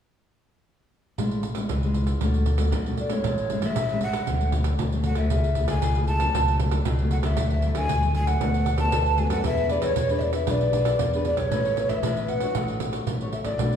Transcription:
1.18 A1 A2 G#3 C#4 E4, pandeiro
1.31 pandeiro
1.43 pandeiro
1.55 G#3 C#4 E4, pandeiro
1.69 C#2 E3, pandeiro
1.83 G#3 C#4 E4, pandeiro
1.94 pandeiro
2.07 pandeiro
2.21 D2 D3 A3 C#4 F#4, pandeiro
2.34 pandeiro
2.46 pandeiro
2.58 A3 C#4 F#4, pandeiro
2.72 B1 A2, pandeiro
2.86 A3 C#4 F#4, pandeiro
2.97 D5, pandeiro
3.10 G#3 C#4 E4 C#5, pandeiro
3.24 A1 A2, pandeiro
3.38 pandeiro
3.50 G#3 C#4 E4, pandeiro
3.62 A1 E5, pandeiro
3.76 A1 E3, pandeiro
3.89 G#3 C#4, pandeiro
3.93 E4
4.01 F#5, pandeiro
4.13 pandeiro
4.27 D2 D3 F#3 A3 C#4, pandeiro
4.41 pandeiro
4.52 F#3 A3 C#4, pandeiro
4.64 pandeiro
4.79 D2 A2, pandeiro
4.92 F#3 A3 C#4, pandeiro
5.04 F#5, pandeiro
5.15 D2 E5, pandeiro
5.30 C#2 C#3 A3 E4 G#4, pandeiro
5.44 pandeiro
5.55 A3 E4 G#4, pandeiro
5.68 C#2 G#5, pandeiro
5.82 C#2 C#3, pandeiro
5.95 A3 E4 G#4, pandeiro
6.07 A5, pandeiro
6.20 F#3 A3 C#4, pandeiro
6.34 C#2 C#3, pandeiro
6.48 pandeiro
6.60 F#3 A3 C#4, pandeiro
6.71 pandeiro
6.85 C#2 C#3, pandeiro
6.99 F#3 A3 C#4, pandeiro
7.11 F#5, pandeiro
7.23 C#2 E5, pandeiro
7.37 D2 D3 F#3 A3 E4, pandeiro
7.50 pandeiro
7.62 F#3 A3 E4, pandeiro
7.75 D2 G#5, pandeiro
7.89 D2 A2, pandeiro
8.03 F#3 A3 E4, pandeiro
8.15 G#5, pandeiro
8.27 F#5, pandeiro
8.41 D2 D3 A3 B3 F#4, pandeiro
8.54 pandeiro
8.66 pandeiro
8.78 A3 B3 F#4 A5, pandeiro
8.92 D2 D3, pandeiro
9.06 pandeiro
9.18 A3 B3 F#4 G#5, pandeiro
9.30 F#2 F#5, pandeiro
9.44 E2 E3 D4 G#4 B4 E5, pandeiro
9.57 pandeiro
9.69 D4 G#4 B4 D5, pandeiro
9.82 E2 C#5, pandeiro
9.96 E2 B2, pandeiro
10.09 D4 G#4 B4, pandeiro
10.19 D5 E5, pandeiro
10.33 E5, pandeiro
10.47 B1 E3 D4 G#4 B4 D5, pandeiro
10.61 pandeiro
10.73 D4 G#4 B4, pandeiro
10.85 pandeiro
10.99 E2 B2, pandeiro
11.13 D4 G#4 B4, pandeiro
11.25 D5, pandeiro
11.37 B1 C#5, pandeiro
11.51 A1 A3 C#4 E4 B4, pandeiro
11.65 pandeiro
11.77 C#4 E4 B4, pandeiro
11.89 A1 E5, pandeiro
12.03 A1 E3, pandeiro
12.17 C#4 E4 B4, pandeiro
12.28 F#5, pandeiro
12.40 D4 F#4 C#5, pandeiro
12.55 A1 A3, pandeiro
12.68 pandeiro
12.80 D4 F#4 C#5, pandeiro
12.93 pandeiro
13.06 A1 A3, pandeiro
13.21 D4 F#4 C#5, pandeiro
13.33 E5, pandeiro
13.44 A1 D5, pandeiro
13.58 B1 B2 A3 D4 F#4, pandeiro
13.72 pandeiro

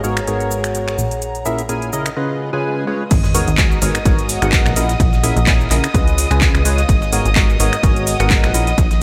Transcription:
Already playing: G#1 G#4 C#5 A#5
0.04 G#2 B3 F#4 G#4 A#4 C#5 F#5, cabasa
0.17 finger snap, closed hi-hat, cabasa
0.27 G#2 B3 F#4 G#4 A#4 C#5, closed hi-hat, cabasa
0.40 closed hi-hat, cabasa
0.51 cabasa
0.64 finger snap, closed hi-hat, cabasa
0.75 closed hi-hat, cabasa
0.88 finger snap, cabasa
0.98 A#1, cabasa
1.11 closed hi-hat, cabasa
1.22 closed hi-hat, cabasa
1.35 closed hi-hat, cabasa
1.46 A#2 C#4 E4 G#4 A#4 E5, cabasa
1.58 closed hi-hat, cabasa
1.69 A#2 C#4 E4 G#4 A#4 G#5, closed hi-hat, cabasa
1.82 closed hi-hat, cabasa
1.93 C#3 C#4 E4 G#4 A#4 D#5, cabasa
2.06 finger snap, closed hi-hat, cabasa
2.16 C#3 C#4 F4 G#4 B4 D#5, swell
2.53 C#3 C#4 F4 G#4 B4 G#5
2.87 G#3 C#4 F4 G#4 B4 C#5
3.11 G#1 D#5 D#6, kick, closed hi-hat, crash, ride, sub drop, cabasa
3.24 snare, cabasa
3.34 G#2 B3 F#4 G#4 A#4 C#5, open hi-hat, ride, cabasa
3.48 G#1, closed hi-hat, cabasa
3.58 G#2 B3 F#4 G#4 A#4 D#5, kick, snare, clap, closed hi-hat, ride, cabasa
3.71 cabasa
3.82 G#1 G#2 B3 F#4 G#4 A#4 C#5 F#5, open hi-hat, ride, cabasa
3.95 finger snap, closed hi-hat, cabasa
4.05 G#1 G#2 B3 F#4 G#4 A#4 C#5, kick, closed hi-hat, ride, cabasa
4.19 closed hi-hat, cabasa
4.29 open hi-hat, cabasa
4.42 G#1 G#2 B3 F#4 G#4 A#4 F#5, finger snap, closed hi-hat, cabasa
4.52 kick, snare, clap, closed hi-hat, ride, cabasa
4.65 A#1, finger snap, snare, cabasa
4.76 A#2 C#4 E4 G#4 A#4 D#5, open hi-hat, ride, cabasa
4.89 snare, closed hi-hat, cabasa
5.00 A#1, kick, closed hi-hat, ride, cabasa
5.13 snare, cabasa
5.23 A#2 C#4 E4 G#4 A#4 E5, snare, open hi-hat, ride, cabasa
5.36 A#1, closed hi-hat, cabasa
5.47 A#2 C#4 E4 G#4 A#4 G#5, kick, snare, clap, closed hi-hat, ride, cabasa
5.60 cabasa
5.71 A#1 C#3 C#4 E4 G#4 A#4 D#5, snare, clap, open hi-hat, ride, cabasa
5.84 finger snap, closed hi-hat, cabasa
5.94 C#2 C#3 C#4 F4 G#4 B4 D#5, kick, closed hi-hat, ride, cabasa
6.08 closed hi-hat, cabasa
6.18 open hi-hat, ride, cabasa
6.31 C#2 C#3 C#4 F4 G#4 B4 G#5, finger snap, closed hi-hat, cabasa
6.37 F5, clap
6.42 kick, snare, closed hi-hat, ride, cabasa
6.54 C#2, finger snap, snare, cabasa
6.65 G#3 C#4 F4 G#4 B4 C#5, open hi-hat, ride, cabasa
6.78 snare, closed hi-hat, cabasa
6.89 G#1, kick, closed hi-hat, ride, cabasa
7.02 snare, cabasa
7.12 G#2 B3 F#4 G#4 A#4 C#5, open hi-hat, ride, cabasa
7.25 G#1, closed hi-hat, cabasa
7.36 G#2 B3 F#4 G#4 A#4 D#5, kick, snare, clap, closed hi-hat, ride, cabasa
7.49 cabasa
7.60 G#1 G#2 B3 F#4 G#4 A#4 C#5, open hi-hat, ride, cabasa
7.64 F#5
7.73 finger snap, closed hi-hat, cabasa
7.83 G#1 G#2 B3 F#4 G#4 A#4 C#5, kick, closed hi-hat, ride, cabasa
7.96 closed hi-hat, cabasa
8.07 open hi-hat, cabasa
8.20 G#1 G#2 B3 F#4 G#4 A#4 F#5, finger snap, closed hi-hat, cabasa
8.30 kick, snare, clap, closed hi-hat, ride, cabasa
8.43 A#1, finger snap, snare, cabasa
8.54 A#2 C#4 E4 G#4 A#4 D#5, open hi-hat, ride, cabasa
8.67 snare, closed hi-hat, cabasa
8.78 A#1, kick, closed hi-hat, ride, cabasa
8.91 snare, closed hi-hat, cabasa

